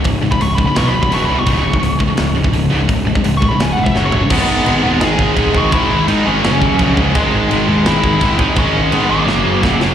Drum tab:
CC |----------------|----------------|----------------|x---x---x---x---|
HH |o---o---o---o---|o---o---o---o---|o---o---o-------|----------------|
SD |--------o-------|--------o-------|--------o---o---|--------o-------|
FT |----------------|----------------|--------------o-|----------------|
BD |o--o--o----o----|o--o--o----o----|o--o--o----o----|o---------o-o-o-|

CC |x---x---x---x---|x---x---x---x---|x---x-----------|
HH |----------------|----------------|----------------|
SD |--------o-------|--------o-------|--------o---o-o-|
FT |----------------|----------------|----------------|
BD |o---------o-o-o-|o---------o-o-o-|o-----------o---|